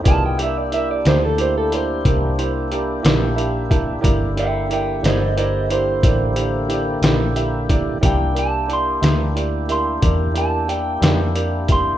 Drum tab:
HH |xxxxxxxxxxxx|xxxxxxxxxxxx|xxxxxxxxxxxx|
SD |---o-----o--|---o-----o--|---o-----o--|
BD |o-----o----o|o-----o----o|o-----o----o|